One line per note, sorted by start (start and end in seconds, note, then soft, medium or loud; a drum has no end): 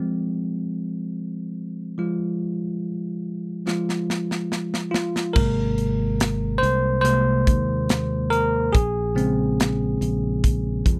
0.00 1.98 F3 soft
0.00 1.99 G#3 soft
0.00 2.00 C4 soft
1.98 2.54 F3 soft
1.98 2.55 G#3 soft
1.98 2.55 F4 soft
3.67 4.05 F3 soft
3.67 4.05 G#3 soft
3.67 4.05 F4 soft
3.67 snare soft
3.89 snare soft
4.10 snare medium
4.31 snare medium
4.52 snare medium
4.74 snare medium
4.91 5.36 F4 medium
4.91 snare medium
5.16 snare medium
5.33 6.59 G#1 medium
5.33 6.58 C3 soft
5.33 6.58 G#3 soft
5.33 6.59 A#3 soft
5.33 6.65 A#4 medium
5.33 kick loud
5.33 crash loud
5.78 closed hi-hat medium
6.20 snare loud
6.20 closed hi-hat medium
6.58 7.00 C5 medium
6.63 7.43 C2 medium
6.63 closed hi-hat medium
7.01 7.43 C3 soft
7.01 7.43 G#3 soft
7.01 7.43 A#3 soft
7.01 7.84 C5 medium
7.01 closed hi-hat medium
7.47 8.70 D#2 medium
7.47 kick medium
7.47 closed hi-hat medium
7.89 snare loud
7.89 closed hi-hat medium
8.30 8.70 A#4 medium
8.30 closed hi-hat medium
8.73 9.97 A#1 medium
8.73 9.96 G#4 medium
8.73 kick loud
8.73 closed hi-hat medium
9.15 10.99 C#3 medium
9.15 10.99 G#3 soft
9.15 10.99 C4 medium
9.15 closed hi-hat medium
9.60 snare loud
9.60 closed hi-hat loud
10.01 10.81 A#1 medium
10.01 closed hi-hat medium
10.44 kick medium
10.44 closed hi-hat medium
10.86 10.99 F2 loud
10.86 kick medium
10.86 closed hi-hat medium